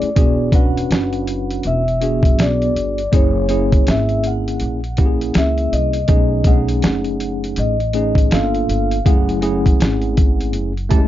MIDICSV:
0, 0, Header, 1, 6, 480
1, 0, Start_track
1, 0, Tempo, 740741
1, 107, Time_signature, 4, 2, 24, 8
1, 7179, End_track
2, 0, Start_track
2, 0, Title_t, "Vibraphone"
2, 0, Program_c, 0, 11
2, 0, Note_on_c, 0, 74, 81
2, 358, Note_on_c, 0, 78, 101
2, 367, Note_off_c, 0, 74, 0
2, 1083, Note_on_c, 0, 76, 98
2, 1094, Note_off_c, 0, 78, 0
2, 1564, Note_on_c, 0, 74, 96
2, 1569, Note_off_c, 0, 76, 0
2, 2010, Note_off_c, 0, 74, 0
2, 2042, Note_on_c, 0, 73, 92
2, 2489, Note_off_c, 0, 73, 0
2, 2528, Note_on_c, 0, 76, 99
2, 2741, Note_off_c, 0, 76, 0
2, 2768, Note_on_c, 0, 78, 99
2, 3487, Note_on_c, 0, 76, 94
2, 3499, Note_off_c, 0, 78, 0
2, 3701, Note_off_c, 0, 76, 0
2, 3714, Note_on_c, 0, 75, 88
2, 4194, Note_on_c, 0, 78, 94
2, 4205, Note_off_c, 0, 75, 0
2, 4920, Note_on_c, 0, 75, 83
2, 4932, Note_off_c, 0, 78, 0
2, 5396, Note_on_c, 0, 77, 91
2, 5408, Note_off_c, 0, 75, 0
2, 5872, Note_on_c, 0, 78, 89
2, 5886, Note_off_c, 0, 77, 0
2, 6804, Note_off_c, 0, 78, 0
2, 7179, End_track
3, 0, Start_track
3, 0, Title_t, "Tine electric piano"
3, 0, Program_c, 1, 4
3, 0, Note_on_c, 1, 57, 83
3, 71, Note_off_c, 1, 57, 0
3, 102, Note_on_c, 1, 59, 71
3, 104, Note_on_c, 1, 62, 64
3, 106, Note_on_c, 1, 66, 64
3, 109, Note_on_c, 1, 68, 80
3, 317, Note_off_c, 1, 59, 0
3, 318, Note_off_c, 1, 62, 0
3, 319, Note_off_c, 1, 66, 0
3, 320, Note_off_c, 1, 68, 0
3, 341, Note_on_c, 1, 61, 67
3, 346, Note_on_c, 1, 62, 61
3, 348, Note_on_c, 1, 66, 61
3, 350, Note_on_c, 1, 71, 76
3, 1183, Note_off_c, 1, 61, 0
3, 1186, Note_off_c, 1, 62, 0
3, 1187, Note_off_c, 1, 66, 0
3, 1188, Note_off_c, 1, 71, 0
3, 1301, Note_on_c, 1, 59, 61
3, 1304, Note_on_c, 1, 62, 58
3, 1308, Note_on_c, 1, 66, 57
3, 1313, Note_on_c, 1, 68, 67
3, 1941, Note_off_c, 1, 59, 0
3, 1943, Note_off_c, 1, 62, 0
3, 1945, Note_off_c, 1, 66, 0
3, 1947, Note_off_c, 1, 68, 0
3, 2021, Note_on_c, 1, 58, 72
3, 2025, Note_on_c, 1, 61, 62
3, 2027, Note_on_c, 1, 64, 67
3, 2032, Note_on_c, 1, 68, 82
3, 2236, Note_off_c, 1, 58, 0
3, 2238, Note_off_c, 1, 61, 0
3, 2240, Note_off_c, 1, 64, 0
3, 2242, Note_off_c, 1, 68, 0
3, 2260, Note_on_c, 1, 58, 68
3, 2264, Note_on_c, 1, 61, 62
3, 2268, Note_on_c, 1, 64, 64
3, 2271, Note_on_c, 1, 68, 78
3, 3103, Note_off_c, 1, 58, 0
3, 3105, Note_off_c, 1, 61, 0
3, 3107, Note_off_c, 1, 64, 0
3, 3108, Note_off_c, 1, 68, 0
3, 3226, Note_on_c, 1, 58, 67
3, 3228, Note_on_c, 1, 61, 59
3, 3231, Note_on_c, 1, 64, 62
3, 3237, Note_on_c, 1, 67, 59
3, 3278, Note_on_c, 1, 68, 69
3, 3284, Note_off_c, 1, 67, 0
3, 3864, Note_off_c, 1, 58, 0
3, 3865, Note_off_c, 1, 61, 0
3, 3866, Note_off_c, 1, 64, 0
3, 3890, Note_off_c, 1, 68, 0
3, 3939, Note_on_c, 1, 57, 71
3, 3943, Note_on_c, 1, 61, 68
3, 3946, Note_on_c, 1, 63, 67
3, 3950, Note_on_c, 1, 68, 84
3, 4155, Note_off_c, 1, 57, 0
3, 4157, Note_off_c, 1, 61, 0
3, 4159, Note_off_c, 1, 63, 0
3, 4161, Note_off_c, 1, 68, 0
3, 4181, Note_on_c, 1, 57, 68
3, 4186, Note_on_c, 1, 61, 62
3, 4190, Note_on_c, 1, 62, 48
3, 4192, Note_on_c, 1, 68, 72
3, 4230, Note_on_c, 1, 63, 65
3, 4240, Note_off_c, 1, 62, 0
3, 5023, Note_off_c, 1, 57, 0
3, 5026, Note_off_c, 1, 61, 0
3, 5028, Note_off_c, 1, 68, 0
3, 5048, Note_off_c, 1, 63, 0
3, 5143, Note_on_c, 1, 57, 65
3, 5148, Note_on_c, 1, 61, 62
3, 5150, Note_on_c, 1, 63, 61
3, 5151, Note_on_c, 1, 68, 72
3, 5383, Note_on_c, 1, 58, 68
3, 5385, Note_off_c, 1, 57, 0
3, 5385, Note_on_c, 1, 62, 72
3, 5387, Note_off_c, 1, 61, 0
3, 5389, Note_off_c, 1, 63, 0
3, 5389, Note_off_c, 1, 68, 0
3, 5389, Note_on_c, 1, 65, 72
3, 5393, Note_on_c, 1, 69, 80
3, 5810, Note_off_c, 1, 58, 0
3, 5811, Note_off_c, 1, 62, 0
3, 5813, Note_off_c, 1, 65, 0
3, 5815, Note_off_c, 1, 69, 0
3, 5865, Note_on_c, 1, 57, 72
3, 5870, Note_on_c, 1, 61, 66
3, 5872, Note_on_c, 1, 64, 65
3, 5876, Note_on_c, 1, 68, 85
3, 6078, Note_off_c, 1, 57, 0
3, 6081, Note_off_c, 1, 61, 0
3, 6082, Note_off_c, 1, 64, 0
3, 6084, Note_off_c, 1, 68, 0
3, 6098, Note_on_c, 1, 57, 63
3, 6102, Note_on_c, 1, 61, 61
3, 6108, Note_on_c, 1, 68, 81
3, 6109, Note_on_c, 1, 64, 62
3, 6942, Note_off_c, 1, 57, 0
3, 6944, Note_off_c, 1, 61, 0
3, 6947, Note_off_c, 1, 64, 0
3, 6947, Note_off_c, 1, 68, 0
3, 7058, Note_on_c, 1, 57, 79
3, 7063, Note_on_c, 1, 61, 69
3, 7065, Note_on_c, 1, 64, 69
3, 7067, Note_on_c, 1, 81, 72
3, 7069, Note_on_c, 1, 67, 68
3, 7111, Note_on_c, 1, 56, 86
3, 7120, Note_off_c, 1, 67, 0
3, 7179, Note_off_c, 1, 56, 0
3, 7179, Note_off_c, 1, 57, 0
3, 7179, Note_off_c, 1, 61, 0
3, 7179, Note_off_c, 1, 64, 0
3, 7179, Note_off_c, 1, 81, 0
3, 7179, End_track
4, 0, Start_track
4, 0, Title_t, "Upright bass"
4, 0, Program_c, 2, 32
4, 109, Note_on_c, 2, 28, 90
4, 564, Note_off_c, 2, 28, 0
4, 587, Note_on_c, 2, 30, 86
4, 1043, Note_off_c, 2, 30, 0
4, 1071, Note_on_c, 2, 28, 91
4, 1549, Note_off_c, 2, 28, 0
4, 1549, Note_on_c, 2, 35, 86
4, 1776, Note_off_c, 2, 35, 0
4, 1787, Note_on_c, 2, 31, 79
4, 2015, Note_off_c, 2, 31, 0
4, 2028, Note_on_c, 2, 30, 105
4, 2484, Note_off_c, 2, 30, 0
4, 2509, Note_on_c, 2, 32, 89
4, 2964, Note_off_c, 2, 32, 0
4, 2989, Note_on_c, 2, 34, 81
4, 3444, Note_off_c, 2, 34, 0
4, 3471, Note_on_c, 2, 37, 86
4, 3697, Note_off_c, 2, 37, 0
4, 3710, Note_on_c, 2, 36, 90
4, 3936, Note_off_c, 2, 36, 0
4, 3946, Note_on_c, 2, 35, 100
4, 4402, Note_off_c, 2, 35, 0
4, 4430, Note_on_c, 2, 30, 81
4, 4885, Note_off_c, 2, 30, 0
4, 4910, Note_on_c, 2, 33, 101
4, 5364, Note_off_c, 2, 33, 0
4, 5387, Note_on_c, 2, 31, 91
4, 5615, Note_off_c, 2, 31, 0
4, 5629, Note_on_c, 2, 31, 86
4, 5856, Note_off_c, 2, 31, 0
4, 5871, Note_on_c, 2, 30, 99
4, 6325, Note_off_c, 2, 30, 0
4, 6350, Note_on_c, 2, 32, 90
4, 6829, Note_off_c, 2, 32, 0
4, 6829, Note_on_c, 2, 30, 88
4, 7179, Note_off_c, 2, 30, 0
4, 7179, End_track
5, 0, Start_track
5, 0, Title_t, "Muted upright bass strokes"
5, 15, Note_on_c, 9, 29, 41
5, 79, Note_off_c, 9, 29, 0
5, 7179, End_track
6, 0, Start_track
6, 0, Title_t, "Drums"
6, 11, Note_on_c, 9, 42, 51
6, 76, Note_off_c, 9, 42, 0
6, 106, Note_on_c, 9, 42, 93
6, 107, Note_on_c, 9, 36, 103
6, 171, Note_off_c, 9, 36, 0
6, 171, Note_off_c, 9, 42, 0
6, 338, Note_on_c, 9, 36, 103
6, 341, Note_on_c, 9, 42, 77
6, 403, Note_off_c, 9, 36, 0
6, 406, Note_off_c, 9, 42, 0
6, 502, Note_on_c, 9, 42, 56
6, 566, Note_off_c, 9, 42, 0
6, 587, Note_on_c, 9, 42, 78
6, 598, Note_on_c, 9, 38, 103
6, 652, Note_off_c, 9, 42, 0
6, 662, Note_off_c, 9, 38, 0
6, 730, Note_on_c, 9, 42, 33
6, 795, Note_off_c, 9, 42, 0
6, 826, Note_on_c, 9, 42, 75
6, 891, Note_off_c, 9, 42, 0
6, 975, Note_on_c, 9, 42, 51
6, 1040, Note_off_c, 9, 42, 0
6, 1059, Note_on_c, 9, 42, 67
6, 1124, Note_off_c, 9, 42, 0
6, 1218, Note_on_c, 9, 42, 36
6, 1283, Note_off_c, 9, 42, 0
6, 1306, Note_on_c, 9, 42, 73
6, 1371, Note_off_c, 9, 42, 0
6, 1444, Note_on_c, 9, 36, 77
6, 1459, Note_on_c, 9, 42, 49
6, 1508, Note_off_c, 9, 36, 0
6, 1523, Note_off_c, 9, 42, 0
6, 1547, Note_on_c, 9, 42, 82
6, 1554, Note_on_c, 9, 38, 101
6, 1611, Note_off_c, 9, 42, 0
6, 1619, Note_off_c, 9, 38, 0
6, 1697, Note_on_c, 9, 42, 33
6, 1761, Note_off_c, 9, 42, 0
6, 1791, Note_on_c, 9, 42, 60
6, 1856, Note_off_c, 9, 42, 0
6, 1932, Note_on_c, 9, 42, 52
6, 1997, Note_off_c, 9, 42, 0
6, 2026, Note_on_c, 9, 36, 95
6, 2026, Note_on_c, 9, 42, 86
6, 2091, Note_off_c, 9, 36, 0
6, 2091, Note_off_c, 9, 42, 0
6, 2260, Note_on_c, 9, 42, 73
6, 2325, Note_off_c, 9, 42, 0
6, 2413, Note_on_c, 9, 36, 82
6, 2413, Note_on_c, 9, 42, 57
6, 2478, Note_off_c, 9, 36, 0
6, 2478, Note_off_c, 9, 42, 0
6, 2506, Note_on_c, 9, 42, 83
6, 2516, Note_on_c, 9, 38, 103
6, 2571, Note_off_c, 9, 42, 0
6, 2581, Note_off_c, 9, 38, 0
6, 2649, Note_on_c, 9, 42, 34
6, 2714, Note_off_c, 9, 42, 0
6, 2745, Note_on_c, 9, 42, 67
6, 2810, Note_off_c, 9, 42, 0
6, 2902, Note_on_c, 9, 42, 54
6, 2966, Note_off_c, 9, 42, 0
6, 2979, Note_on_c, 9, 42, 69
6, 3043, Note_off_c, 9, 42, 0
6, 3135, Note_on_c, 9, 42, 35
6, 3200, Note_off_c, 9, 42, 0
6, 3220, Note_on_c, 9, 42, 65
6, 3230, Note_on_c, 9, 36, 84
6, 3285, Note_off_c, 9, 42, 0
6, 3294, Note_off_c, 9, 36, 0
6, 3378, Note_on_c, 9, 42, 51
6, 3443, Note_off_c, 9, 42, 0
6, 3461, Note_on_c, 9, 42, 81
6, 3468, Note_on_c, 9, 38, 105
6, 3526, Note_off_c, 9, 42, 0
6, 3533, Note_off_c, 9, 38, 0
6, 3614, Note_on_c, 9, 42, 35
6, 3678, Note_off_c, 9, 42, 0
6, 3713, Note_on_c, 9, 42, 67
6, 3777, Note_off_c, 9, 42, 0
6, 3845, Note_on_c, 9, 42, 55
6, 3910, Note_off_c, 9, 42, 0
6, 3939, Note_on_c, 9, 42, 86
6, 3944, Note_on_c, 9, 36, 100
6, 4003, Note_off_c, 9, 42, 0
6, 4009, Note_off_c, 9, 36, 0
6, 4175, Note_on_c, 9, 36, 97
6, 4175, Note_on_c, 9, 42, 76
6, 4240, Note_off_c, 9, 36, 0
6, 4240, Note_off_c, 9, 42, 0
6, 4332, Note_on_c, 9, 42, 59
6, 4397, Note_off_c, 9, 42, 0
6, 4422, Note_on_c, 9, 42, 83
6, 4432, Note_on_c, 9, 38, 117
6, 4487, Note_off_c, 9, 42, 0
6, 4497, Note_off_c, 9, 38, 0
6, 4565, Note_on_c, 9, 42, 32
6, 4630, Note_off_c, 9, 42, 0
6, 4667, Note_on_c, 9, 42, 71
6, 4732, Note_off_c, 9, 42, 0
6, 4820, Note_on_c, 9, 42, 56
6, 4885, Note_off_c, 9, 42, 0
6, 4900, Note_on_c, 9, 42, 76
6, 4965, Note_off_c, 9, 42, 0
6, 5055, Note_on_c, 9, 42, 36
6, 5120, Note_off_c, 9, 42, 0
6, 5141, Note_on_c, 9, 42, 69
6, 5206, Note_off_c, 9, 42, 0
6, 5283, Note_on_c, 9, 36, 81
6, 5300, Note_on_c, 9, 42, 51
6, 5348, Note_off_c, 9, 36, 0
6, 5364, Note_off_c, 9, 42, 0
6, 5385, Note_on_c, 9, 42, 80
6, 5393, Note_on_c, 9, 38, 112
6, 5450, Note_off_c, 9, 42, 0
6, 5458, Note_off_c, 9, 38, 0
6, 5537, Note_on_c, 9, 42, 35
6, 5602, Note_off_c, 9, 42, 0
6, 5634, Note_on_c, 9, 42, 68
6, 5699, Note_off_c, 9, 42, 0
6, 5776, Note_on_c, 9, 42, 57
6, 5840, Note_off_c, 9, 42, 0
6, 5869, Note_on_c, 9, 36, 101
6, 5873, Note_on_c, 9, 42, 91
6, 5934, Note_off_c, 9, 36, 0
6, 5938, Note_off_c, 9, 42, 0
6, 6019, Note_on_c, 9, 42, 35
6, 6084, Note_off_c, 9, 42, 0
6, 6105, Note_on_c, 9, 42, 78
6, 6170, Note_off_c, 9, 42, 0
6, 6258, Note_on_c, 9, 36, 77
6, 6263, Note_on_c, 9, 42, 50
6, 6323, Note_off_c, 9, 36, 0
6, 6328, Note_off_c, 9, 42, 0
6, 6353, Note_on_c, 9, 42, 80
6, 6363, Note_on_c, 9, 38, 114
6, 6418, Note_off_c, 9, 42, 0
6, 6428, Note_off_c, 9, 38, 0
6, 6490, Note_on_c, 9, 42, 32
6, 6555, Note_off_c, 9, 42, 0
6, 6591, Note_on_c, 9, 42, 70
6, 6594, Note_on_c, 9, 36, 90
6, 6656, Note_off_c, 9, 42, 0
6, 6659, Note_off_c, 9, 36, 0
6, 6743, Note_on_c, 9, 42, 50
6, 6807, Note_off_c, 9, 42, 0
6, 6825, Note_on_c, 9, 42, 71
6, 6889, Note_off_c, 9, 42, 0
6, 6982, Note_on_c, 9, 42, 36
6, 7046, Note_off_c, 9, 42, 0
6, 7067, Note_on_c, 9, 42, 67
6, 7071, Note_on_c, 9, 36, 82
6, 7132, Note_off_c, 9, 42, 0
6, 7136, Note_off_c, 9, 36, 0
6, 7179, End_track
0, 0, End_of_file